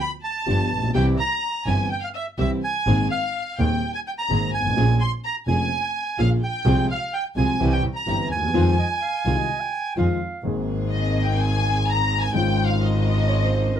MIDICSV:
0, 0, Header, 1, 7, 480
1, 0, Start_track
1, 0, Key_signature, -4, "minor"
1, 0, Tempo, 474308
1, 961, Time_signature, 4, 2, 24, 8
1, 10574, Key_signature, -4, "major"
1, 13965, End_track
2, 0, Start_track
2, 0, Title_t, "Bandoneon"
2, 0, Program_c, 0, 23
2, 9, Note_on_c, 0, 83, 85
2, 115, Note_off_c, 0, 83, 0
2, 244, Note_on_c, 0, 81, 79
2, 923, Note_off_c, 0, 81, 0
2, 967, Note_on_c, 0, 79, 78
2, 1074, Note_off_c, 0, 79, 0
2, 1212, Note_on_c, 0, 82, 88
2, 1696, Note_on_c, 0, 80, 67
2, 1705, Note_off_c, 0, 82, 0
2, 1915, Note_off_c, 0, 80, 0
2, 1947, Note_on_c, 0, 79, 75
2, 2050, Note_off_c, 0, 79, 0
2, 2065, Note_on_c, 0, 77, 75
2, 2116, Note_off_c, 0, 77, 0
2, 2184, Note_on_c, 0, 76, 61
2, 2290, Note_off_c, 0, 76, 0
2, 2432, Note_on_c, 0, 76, 70
2, 2537, Note_off_c, 0, 76, 0
2, 2674, Note_on_c, 0, 80, 84
2, 3115, Note_off_c, 0, 80, 0
2, 3150, Note_on_c, 0, 77, 77
2, 3633, Note_on_c, 0, 79, 68
2, 3642, Note_off_c, 0, 77, 0
2, 3964, Note_off_c, 0, 79, 0
2, 3997, Note_on_c, 0, 80, 88
2, 4049, Note_off_c, 0, 80, 0
2, 4123, Note_on_c, 0, 79, 73
2, 4173, Note_off_c, 0, 79, 0
2, 4231, Note_on_c, 0, 82, 75
2, 4563, Note_off_c, 0, 82, 0
2, 4598, Note_on_c, 0, 80, 85
2, 5080, Note_on_c, 0, 84, 86
2, 5086, Note_off_c, 0, 80, 0
2, 5184, Note_off_c, 0, 84, 0
2, 5322, Note_on_c, 0, 82, 84
2, 5426, Note_off_c, 0, 82, 0
2, 5544, Note_on_c, 0, 80, 79
2, 6272, Note_on_c, 0, 77, 80
2, 6282, Note_off_c, 0, 80, 0
2, 6376, Note_off_c, 0, 77, 0
2, 6513, Note_on_c, 0, 79, 80
2, 6950, Note_off_c, 0, 79, 0
2, 6993, Note_on_c, 0, 77, 74
2, 7222, Note_on_c, 0, 79, 83
2, 7230, Note_off_c, 0, 77, 0
2, 7327, Note_off_c, 0, 79, 0
2, 7463, Note_on_c, 0, 80, 73
2, 7821, Note_on_c, 0, 79, 86
2, 7825, Note_off_c, 0, 80, 0
2, 7926, Note_off_c, 0, 79, 0
2, 8057, Note_on_c, 0, 82, 77
2, 8385, Note_off_c, 0, 82, 0
2, 8415, Note_on_c, 0, 80, 78
2, 10054, Note_off_c, 0, 80, 0
2, 13965, End_track
3, 0, Start_track
3, 0, Title_t, "Violin section"
3, 0, Program_c, 1, 48
3, 5, Note_on_c, 1, 83, 67
3, 112, Note_off_c, 1, 83, 0
3, 239, Note_on_c, 1, 81, 76
3, 920, Note_off_c, 1, 81, 0
3, 957, Note_on_c, 1, 79, 61
3, 1067, Note_off_c, 1, 79, 0
3, 1202, Note_on_c, 1, 82, 66
3, 1652, Note_off_c, 1, 82, 0
3, 1683, Note_on_c, 1, 80, 64
3, 1909, Note_off_c, 1, 80, 0
3, 1922, Note_on_c, 1, 79, 62
3, 2036, Note_off_c, 1, 79, 0
3, 2040, Note_on_c, 1, 77, 54
3, 2096, Note_off_c, 1, 77, 0
3, 2176, Note_on_c, 1, 76, 63
3, 2284, Note_off_c, 1, 76, 0
3, 2416, Note_on_c, 1, 76, 55
3, 2524, Note_off_c, 1, 76, 0
3, 2663, Note_on_c, 1, 80, 68
3, 3109, Note_off_c, 1, 80, 0
3, 3141, Note_on_c, 1, 77, 69
3, 3590, Note_off_c, 1, 77, 0
3, 3628, Note_on_c, 1, 79, 68
3, 3962, Note_off_c, 1, 79, 0
3, 3992, Note_on_c, 1, 80, 63
3, 4044, Note_off_c, 1, 80, 0
3, 4123, Note_on_c, 1, 79, 65
3, 4173, Note_off_c, 1, 79, 0
3, 4240, Note_on_c, 1, 82, 76
3, 4568, Note_off_c, 1, 82, 0
3, 4593, Note_on_c, 1, 80, 66
3, 5036, Note_off_c, 1, 80, 0
3, 5063, Note_on_c, 1, 84, 70
3, 5172, Note_off_c, 1, 84, 0
3, 5314, Note_on_c, 1, 82, 66
3, 5420, Note_off_c, 1, 82, 0
3, 5551, Note_on_c, 1, 80, 81
3, 6224, Note_off_c, 1, 80, 0
3, 6266, Note_on_c, 1, 77, 65
3, 6372, Note_off_c, 1, 77, 0
3, 6512, Note_on_c, 1, 79, 79
3, 6949, Note_off_c, 1, 79, 0
3, 6981, Note_on_c, 1, 77, 62
3, 7200, Note_off_c, 1, 77, 0
3, 7223, Note_on_c, 1, 79, 63
3, 7328, Note_off_c, 1, 79, 0
3, 7459, Note_on_c, 1, 80, 72
3, 7788, Note_off_c, 1, 80, 0
3, 7815, Note_on_c, 1, 79, 61
3, 7921, Note_off_c, 1, 79, 0
3, 8050, Note_on_c, 1, 82, 76
3, 8381, Note_off_c, 1, 82, 0
3, 8415, Note_on_c, 1, 80, 70
3, 10055, Note_off_c, 1, 80, 0
3, 11053, Note_on_c, 1, 75, 71
3, 11354, Note_off_c, 1, 75, 0
3, 11381, Note_on_c, 1, 79, 76
3, 11540, Note_off_c, 1, 79, 0
3, 11544, Note_on_c, 1, 80, 90
3, 12022, Note_off_c, 1, 80, 0
3, 12029, Note_on_c, 1, 82, 92
3, 12344, Note_off_c, 1, 82, 0
3, 12357, Note_on_c, 1, 80, 88
3, 12502, Note_on_c, 1, 79, 91
3, 12507, Note_off_c, 1, 80, 0
3, 12795, Note_off_c, 1, 79, 0
3, 12825, Note_on_c, 1, 77, 80
3, 12979, Note_off_c, 1, 77, 0
3, 12989, Note_on_c, 1, 75, 74
3, 13965, Note_off_c, 1, 75, 0
3, 13965, End_track
4, 0, Start_track
4, 0, Title_t, "Clarinet"
4, 0, Program_c, 2, 71
4, 8891, Note_on_c, 2, 75, 53
4, 8997, Note_off_c, 2, 75, 0
4, 9124, Note_on_c, 2, 77, 66
4, 9488, Note_on_c, 2, 75, 68
4, 9503, Note_off_c, 2, 77, 0
4, 9724, Note_on_c, 2, 79, 82
4, 9740, Note_off_c, 2, 75, 0
4, 10089, Note_off_c, 2, 79, 0
4, 10104, Note_on_c, 2, 77, 72
4, 10549, Note_off_c, 2, 77, 0
4, 13441, Note_on_c, 2, 73, 88
4, 13592, Note_off_c, 2, 73, 0
4, 13604, Note_on_c, 2, 72, 83
4, 13929, Note_on_c, 2, 70, 76
4, 13944, Note_off_c, 2, 72, 0
4, 13965, Note_off_c, 2, 70, 0
4, 13965, End_track
5, 0, Start_track
5, 0, Title_t, "String section"
5, 0, Program_c, 3, 48
5, 474, Note_on_c, 3, 59, 45
5, 476, Note_on_c, 3, 65, 40
5, 480, Note_on_c, 3, 67, 47
5, 679, Note_off_c, 3, 59, 0
5, 680, Note_off_c, 3, 65, 0
5, 682, Note_off_c, 3, 67, 0
5, 956, Note_on_c, 3, 60, 58
5, 959, Note_on_c, 3, 64, 62
5, 961, Note_on_c, 3, 67, 68
5, 1162, Note_off_c, 3, 60, 0
5, 1163, Note_off_c, 3, 64, 0
5, 1164, Note_off_c, 3, 67, 0
5, 1685, Note_on_c, 3, 60, 40
5, 1688, Note_on_c, 3, 64, 39
5, 1688, Note_on_c, 3, 67, 49
5, 1888, Note_off_c, 3, 60, 0
5, 1889, Note_off_c, 3, 64, 0
5, 1889, Note_off_c, 3, 67, 0
5, 2414, Note_on_c, 3, 60, 40
5, 2415, Note_on_c, 3, 64, 39
5, 2417, Note_on_c, 3, 67, 46
5, 2617, Note_off_c, 3, 60, 0
5, 2618, Note_off_c, 3, 64, 0
5, 2618, Note_off_c, 3, 67, 0
5, 2896, Note_on_c, 3, 58, 59
5, 2897, Note_on_c, 3, 60, 51
5, 2900, Note_on_c, 3, 68, 63
5, 3099, Note_off_c, 3, 58, 0
5, 3100, Note_off_c, 3, 60, 0
5, 3101, Note_off_c, 3, 68, 0
5, 3625, Note_on_c, 3, 60, 36
5, 3626, Note_on_c, 3, 58, 41
5, 3628, Note_on_c, 3, 68, 43
5, 3826, Note_off_c, 3, 60, 0
5, 3827, Note_off_c, 3, 58, 0
5, 3827, Note_off_c, 3, 68, 0
5, 4346, Note_on_c, 3, 58, 44
5, 4349, Note_on_c, 3, 60, 39
5, 4350, Note_on_c, 3, 68, 51
5, 4547, Note_off_c, 3, 58, 0
5, 4549, Note_off_c, 3, 60, 0
5, 4549, Note_off_c, 3, 68, 0
5, 4824, Note_on_c, 3, 58, 59
5, 4827, Note_on_c, 3, 61, 53
5, 4829, Note_on_c, 3, 68, 62
5, 5027, Note_off_c, 3, 58, 0
5, 5028, Note_off_c, 3, 61, 0
5, 5029, Note_off_c, 3, 68, 0
5, 5542, Note_on_c, 3, 58, 42
5, 5545, Note_on_c, 3, 61, 41
5, 5547, Note_on_c, 3, 68, 50
5, 5745, Note_off_c, 3, 58, 0
5, 5746, Note_off_c, 3, 61, 0
5, 5748, Note_off_c, 3, 68, 0
5, 6264, Note_on_c, 3, 58, 47
5, 6265, Note_on_c, 3, 61, 43
5, 6266, Note_on_c, 3, 68, 50
5, 6462, Note_off_c, 3, 58, 0
5, 6463, Note_off_c, 3, 61, 0
5, 6463, Note_off_c, 3, 68, 0
5, 6735, Note_on_c, 3, 60, 67
5, 6736, Note_on_c, 3, 65, 62
5, 6740, Note_on_c, 3, 68, 65
5, 6937, Note_off_c, 3, 60, 0
5, 6937, Note_off_c, 3, 65, 0
5, 6939, Note_off_c, 3, 68, 0
5, 7451, Note_on_c, 3, 60, 46
5, 7451, Note_on_c, 3, 65, 40
5, 7457, Note_on_c, 3, 68, 49
5, 7652, Note_off_c, 3, 60, 0
5, 7652, Note_off_c, 3, 65, 0
5, 7655, Note_off_c, 3, 68, 0
5, 7688, Note_on_c, 3, 60, 68
5, 7691, Note_on_c, 3, 64, 54
5, 7693, Note_on_c, 3, 67, 66
5, 7889, Note_off_c, 3, 60, 0
5, 7891, Note_off_c, 3, 64, 0
5, 7892, Note_off_c, 3, 67, 0
5, 8166, Note_on_c, 3, 60, 47
5, 8169, Note_on_c, 3, 64, 41
5, 8172, Note_on_c, 3, 67, 49
5, 8367, Note_off_c, 3, 60, 0
5, 8368, Note_off_c, 3, 64, 0
5, 8370, Note_off_c, 3, 67, 0
5, 8642, Note_on_c, 3, 63, 59
5, 8642, Note_on_c, 3, 65, 60
5, 8647, Note_on_c, 3, 68, 67
5, 8844, Note_off_c, 3, 63, 0
5, 8844, Note_off_c, 3, 65, 0
5, 8847, Note_off_c, 3, 68, 0
5, 9361, Note_on_c, 3, 63, 43
5, 9362, Note_on_c, 3, 65, 40
5, 9364, Note_on_c, 3, 68, 44
5, 9565, Note_off_c, 3, 63, 0
5, 9565, Note_off_c, 3, 65, 0
5, 9566, Note_off_c, 3, 68, 0
5, 10083, Note_on_c, 3, 63, 45
5, 10085, Note_on_c, 3, 65, 37
5, 10088, Note_on_c, 3, 68, 48
5, 10291, Note_off_c, 3, 63, 0
5, 10292, Note_off_c, 3, 65, 0
5, 10293, Note_off_c, 3, 68, 0
5, 10568, Note_on_c, 3, 58, 57
5, 10571, Note_on_c, 3, 60, 55
5, 10573, Note_on_c, 3, 68, 69
5, 12399, Note_off_c, 3, 58, 0
5, 12401, Note_off_c, 3, 60, 0
5, 12402, Note_off_c, 3, 68, 0
5, 12491, Note_on_c, 3, 61, 59
5, 12492, Note_on_c, 3, 63, 60
5, 12493, Note_on_c, 3, 65, 70
5, 13965, Note_off_c, 3, 61, 0
5, 13965, Note_off_c, 3, 63, 0
5, 13965, Note_off_c, 3, 65, 0
5, 13965, End_track
6, 0, Start_track
6, 0, Title_t, "Grand piano"
6, 0, Program_c, 4, 0
6, 469, Note_on_c, 4, 53, 39
6, 472, Note_on_c, 4, 43, 47
6, 473, Note_on_c, 4, 59, 39
6, 474, Note_on_c, 4, 62, 37
6, 475, Note_on_c, 4, 31, 50
6, 477, Note_on_c, 4, 67, 41
6, 676, Note_off_c, 4, 53, 0
6, 678, Note_off_c, 4, 43, 0
6, 678, Note_off_c, 4, 59, 0
6, 679, Note_off_c, 4, 31, 0
6, 679, Note_off_c, 4, 62, 0
6, 680, Note_off_c, 4, 67, 0
6, 781, Note_on_c, 4, 33, 43
6, 837, Note_on_c, 4, 34, 47
6, 841, Note_off_c, 4, 33, 0
6, 897, Note_on_c, 4, 35, 53
6, 899, Note_off_c, 4, 34, 0
6, 955, Note_on_c, 4, 55, 54
6, 956, Note_on_c, 4, 36, 65
6, 956, Note_on_c, 4, 48, 64
6, 956, Note_on_c, 4, 52, 56
6, 959, Note_on_c, 4, 60, 56
6, 960, Note_off_c, 4, 35, 0
6, 960, Note_on_c, 4, 67, 60
6, 1161, Note_off_c, 4, 36, 0
6, 1161, Note_off_c, 4, 52, 0
6, 1161, Note_off_c, 4, 55, 0
6, 1162, Note_off_c, 4, 48, 0
6, 1163, Note_off_c, 4, 60, 0
6, 1163, Note_off_c, 4, 67, 0
6, 1682, Note_on_c, 4, 52, 34
6, 1685, Note_on_c, 4, 55, 32
6, 1685, Note_on_c, 4, 67, 36
6, 1687, Note_on_c, 4, 31, 42
6, 1687, Note_on_c, 4, 43, 41
6, 1687, Note_on_c, 4, 60, 35
6, 1886, Note_off_c, 4, 52, 0
6, 1888, Note_off_c, 4, 55, 0
6, 1888, Note_off_c, 4, 67, 0
6, 1889, Note_off_c, 4, 31, 0
6, 1889, Note_off_c, 4, 43, 0
6, 1889, Note_off_c, 4, 60, 0
6, 2411, Note_on_c, 4, 52, 38
6, 2414, Note_on_c, 4, 55, 37
6, 2415, Note_on_c, 4, 36, 47
6, 2415, Note_on_c, 4, 48, 47
6, 2416, Note_on_c, 4, 60, 36
6, 2419, Note_on_c, 4, 67, 46
6, 2616, Note_off_c, 4, 52, 0
6, 2617, Note_off_c, 4, 55, 0
6, 2618, Note_off_c, 4, 36, 0
6, 2618, Note_off_c, 4, 48, 0
6, 2618, Note_off_c, 4, 60, 0
6, 2620, Note_off_c, 4, 67, 0
6, 2898, Note_on_c, 4, 51, 54
6, 2898, Note_on_c, 4, 58, 46
6, 2899, Note_on_c, 4, 60, 52
6, 2900, Note_on_c, 4, 44, 64
6, 2901, Note_on_c, 4, 32, 62
6, 2904, Note_on_c, 4, 68, 63
6, 3100, Note_off_c, 4, 51, 0
6, 3100, Note_off_c, 4, 58, 0
6, 3101, Note_off_c, 4, 44, 0
6, 3101, Note_off_c, 4, 60, 0
6, 3102, Note_off_c, 4, 32, 0
6, 3103, Note_off_c, 4, 68, 0
6, 3627, Note_on_c, 4, 58, 33
6, 3628, Note_on_c, 4, 51, 38
6, 3629, Note_on_c, 4, 27, 43
6, 3629, Note_on_c, 4, 60, 31
6, 3631, Note_on_c, 4, 39, 43
6, 3632, Note_on_c, 4, 68, 40
6, 3827, Note_off_c, 4, 58, 0
6, 3828, Note_off_c, 4, 27, 0
6, 3828, Note_off_c, 4, 51, 0
6, 3828, Note_off_c, 4, 60, 0
6, 3829, Note_off_c, 4, 39, 0
6, 3830, Note_off_c, 4, 68, 0
6, 4342, Note_on_c, 4, 51, 42
6, 4347, Note_on_c, 4, 58, 37
6, 4348, Note_on_c, 4, 32, 53
6, 4350, Note_on_c, 4, 44, 46
6, 4351, Note_on_c, 4, 60, 35
6, 4352, Note_on_c, 4, 68, 44
6, 4545, Note_off_c, 4, 51, 0
6, 4548, Note_off_c, 4, 58, 0
6, 4549, Note_off_c, 4, 32, 0
6, 4549, Note_off_c, 4, 44, 0
6, 4550, Note_off_c, 4, 60, 0
6, 4550, Note_off_c, 4, 68, 0
6, 4651, Note_on_c, 4, 31, 40
6, 4706, Note_on_c, 4, 32, 53
6, 4708, Note_off_c, 4, 31, 0
6, 4764, Note_on_c, 4, 33, 55
6, 4766, Note_off_c, 4, 32, 0
6, 4824, Note_on_c, 4, 53, 59
6, 4825, Note_off_c, 4, 33, 0
6, 4826, Note_on_c, 4, 58, 50
6, 4827, Note_on_c, 4, 46, 70
6, 4828, Note_on_c, 4, 61, 55
6, 4828, Note_on_c, 4, 68, 65
6, 4829, Note_on_c, 4, 34, 67
6, 5027, Note_off_c, 4, 53, 0
6, 5027, Note_off_c, 4, 58, 0
6, 5028, Note_off_c, 4, 46, 0
6, 5028, Note_off_c, 4, 61, 0
6, 5028, Note_off_c, 4, 68, 0
6, 5029, Note_off_c, 4, 34, 0
6, 5538, Note_on_c, 4, 53, 37
6, 5541, Note_on_c, 4, 29, 46
6, 5541, Note_on_c, 4, 41, 46
6, 5541, Note_on_c, 4, 58, 31
6, 5543, Note_on_c, 4, 61, 34
6, 5543, Note_on_c, 4, 68, 44
6, 5743, Note_off_c, 4, 53, 0
6, 5745, Note_off_c, 4, 29, 0
6, 5745, Note_off_c, 4, 41, 0
6, 5745, Note_off_c, 4, 58, 0
6, 5746, Note_off_c, 4, 61, 0
6, 5746, Note_off_c, 4, 68, 0
6, 6259, Note_on_c, 4, 53, 44
6, 6260, Note_on_c, 4, 46, 53
6, 6261, Note_on_c, 4, 61, 38
6, 6262, Note_on_c, 4, 34, 49
6, 6262, Note_on_c, 4, 58, 40
6, 6263, Note_on_c, 4, 68, 49
6, 6460, Note_off_c, 4, 46, 0
6, 6460, Note_off_c, 4, 53, 0
6, 6461, Note_off_c, 4, 34, 0
6, 6461, Note_off_c, 4, 58, 0
6, 6461, Note_off_c, 4, 61, 0
6, 6462, Note_off_c, 4, 68, 0
6, 6731, Note_on_c, 4, 53, 63
6, 6733, Note_on_c, 4, 56, 60
6, 6734, Note_on_c, 4, 48, 64
6, 6735, Note_on_c, 4, 36, 66
6, 6737, Note_on_c, 4, 68, 65
6, 6738, Note_on_c, 4, 60, 55
6, 6935, Note_off_c, 4, 53, 0
6, 6936, Note_off_c, 4, 48, 0
6, 6936, Note_off_c, 4, 56, 0
6, 6937, Note_off_c, 4, 36, 0
6, 6937, Note_off_c, 4, 68, 0
6, 6938, Note_off_c, 4, 60, 0
6, 7449, Note_on_c, 4, 36, 47
6, 7449, Note_on_c, 4, 48, 46
6, 7450, Note_on_c, 4, 56, 36
6, 7451, Note_on_c, 4, 53, 37
6, 7452, Note_on_c, 4, 60, 37
6, 7456, Note_on_c, 4, 68, 41
6, 7651, Note_off_c, 4, 36, 0
6, 7651, Note_off_c, 4, 48, 0
6, 7651, Note_off_c, 4, 56, 0
6, 7652, Note_off_c, 4, 53, 0
6, 7652, Note_off_c, 4, 60, 0
6, 7654, Note_off_c, 4, 68, 0
6, 7687, Note_on_c, 4, 52, 65
6, 7687, Note_on_c, 4, 55, 54
6, 7689, Note_on_c, 4, 36, 62
6, 7690, Note_on_c, 4, 48, 70
6, 7694, Note_on_c, 4, 67, 63
6, 7695, Note_on_c, 4, 60, 55
6, 7889, Note_off_c, 4, 52, 0
6, 7889, Note_off_c, 4, 55, 0
6, 7890, Note_off_c, 4, 36, 0
6, 7890, Note_off_c, 4, 48, 0
6, 7892, Note_off_c, 4, 67, 0
6, 7893, Note_off_c, 4, 60, 0
6, 8162, Note_on_c, 4, 52, 40
6, 8165, Note_on_c, 4, 43, 51
6, 8166, Note_on_c, 4, 31, 53
6, 8166, Note_on_c, 4, 55, 37
6, 8166, Note_on_c, 4, 60, 37
6, 8170, Note_on_c, 4, 67, 44
6, 8364, Note_off_c, 4, 52, 0
6, 8366, Note_off_c, 4, 43, 0
6, 8366, Note_off_c, 4, 55, 0
6, 8366, Note_off_c, 4, 60, 0
6, 8367, Note_off_c, 4, 31, 0
6, 8368, Note_off_c, 4, 67, 0
6, 8464, Note_on_c, 4, 38, 42
6, 8524, Note_off_c, 4, 38, 0
6, 8527, Note_on_c, 4, 39, 48
6, 8579, Note_on_c, 4, 40, 61
6, 8585, Note_off_c, 4, 39, 0
6, 8638, Note_on_c, 4, 51, 58
6, 8640, Note_on_c, 4, 56, 56
6, 8641, Note_off_c, 4, 40, 0
6, 8641, Note_on_c, 4, 41, 64
6, 8643, Note_on_c, 4, 53, 69
6, 8645, Note_on_c, 4, 60, 49
6, 8648, Note_on_c, 4, 65, 65
6, 8842, Note_off_c, 4, 51, 0
6, 8843, Note_off_c, 4, 41, 0
6, 8843, Note_off_c, 4, 56, 0
6, 8844, Note_off_c, 4, 53, 0
6, 8846, Note_off_c, 4, 60, 0
6, 8847, Note_off_c, 4, 65, 0
6, 9363, Note_on_c, 4, 51, 38
6, 9364, Note_on_c, 4, 36, 47
6, 9365, Note_on_c, 4, 48, 41
6, 9365, Note_on_c, 4, 56, 35
6, 9365, Note_on_c, 4, 60, 33
6, 9368, Note_on_c, 4, 65, 44
6, 9565, Note_off_c, 4, 51, 0
6, 9566, Note_off_c, 4, 36, 0
6, 9566, Note_off_c, 4, 60, 0
6, 9567, Note_off_c, 4, 48, 0
6, 9567, Note_off_c, 4, 56, 0
6, 9568, Note_off_c, 4, 65, 0
6, 10084, Note_on_c, 4, 51, 37
6, 10086, Note_on_c, 4, 56, 35
6, 10089, Note_on_c, 4, 53, 47
6, 10090, Note_on_c, 4, 41, 43
6, 10091, Note_on_c, 4, 60, 36
6, 10091, Note_on_c, 4, 65, 44
6, 10291, Note_off_c, 4, 51, 0
6, 10292, Note_off_c, 4, 56, 0
6, 10294, Note_off_c, 4, 41, 0
6, 10294, Note_off_c, 4, 53, 0
6, 10295, Note_off_c, 4, 60, 0
6, 10295, Note_off_c, 4, 65, 0
6, 10556, Note_on_c, 4, 51, 49
6, 10569, Note_on_c, 4, 58, 43
6, 10576, Note_on_c, 4, 44, 55
6, 10578, Note_on_c, 4, 32, 58
6, 10584, Note_on_c, 4, 60, 45
6, 10597, Note_on_c, 4, 68, 49
6, 12393, Note_off_c, 4, 51, 0
6, 12400, Note_off_c, 4, 58, 0
6, 12403, Note_off_c, 4, 44, 0
6, 12404, Note_off_c, 4, 32, 0
6, 12407, Note_off_c, 4, 60, 0
6, 12414, Note_off_c, 4, 68, 0
6, 12473, Note_on_c, 4, 51, 47
6, 12484, Note_on_c, 4, 56, 42
6, 12491, Note_on_c, 4, 32, 61
6, 12492, Note_on_c, 4, 44, 56
6, 12499, Note_on_c, 4, 61, 49
6, 12513, Note_on_c, 4, 65, 53
6, 13965, Note_off_c, 4, 32, 0
6, 13965, Note_off_c, 4, 44, 0
6, 13965, Note_off_c, 4, 51, 0
6, 13965, Note_off_c, 4, 56, 0
6, 13965, Note_off_c, 4, 61, 0
6, 13965, Note_off_c, 4, 65, 0
6, 13965, End_track
7, 0, Start_track
7, 0, Title_t, "Double bass"
7, 0, Program_c, 5, 43
7, 479, Note_on_c, 5, 31, 49
7, 681, Note_off_c, 5, 31, 0
7, 719, Note_on_c, 5, 34, 49
7, 950, Note_off_c, 5, 34, 0
7, 956, Note_on_c, 5, 36, 77
7, 1162, Note_off_c, 5, 36, 0
7, 1681, Note_on_c, 5, 31, 53
7, 1886, Note_off_c, 5, 31, 0
7, 2410, Note_on_c, 5, 36, 48
7, 2615, Note_off_c, 5, 36, 0
7, 2902, Note_on_c, 5, 32, 78
7, 3102, Note_off_c, 5, 32, 0
7, 3631, Note_on_c, 5, 39, 54
7, 3829, Note_off_c, 5, 39, 0
7, 4348, Note_on_c, 5, 32, 49
7, 4548, Note_off_c, 5, 32, 0
7, 4585, Note_on_c, 5, 32, 52
7, 4817, Note_off_c, 5, 32, 0
7, 4823, Note_on_c, 5, 34, 77
7, 5026, Note_off_c, 5, 34, 0
7, 5540, Note_on_c, 5, 29, 51
7, 5744, Note_off_c, 5, 29, 0
7, 6257, Note_on_c, 5, 34, 53
7, 6459, Note_off_c, 5, 34, 0
7, 6731, Note_on_c, 5, 36, 85
7, 6934, Note_off_c, 5, 36, 0
7, 7449, Note_on_c, 5, 36, 50
7, 7651, Note_off_c, 5, 36, 0
7, 7690, Note_on_c, 5, 36, 85
7, 7890, Note_off_c, 5, 36, 0
7, 8167, Note_on_c, 5, 31, 47
7, 8367, Note_off_c, 5, 31, 0
7, 8402, Note_on_c, 5, 39, 53
7, 8631, Note_off_c, 5, 39, 0
7, 8637, Note_on_c, 5, 41, 83
7, 8842, Note_off_c, 5, 41, 0
7, 9363, Note_on_c, 5, 36, 51
7, 9565, Note_off_c, 5, 36, 0
7, 10082, Note_on_c, 5, 41, 51
7, 10290, Note_off_c, 5, 41, 0
7, 10563, Note_on_c, 5, 32, 66
7, 12397, Note_off_c, 5, 32, 0
7, 12499, Note_on_c, 5, 32, 73
7, 13965, Note_off_c, 5, 32, 0
7, 13965, End_track
0, 0, End_of_file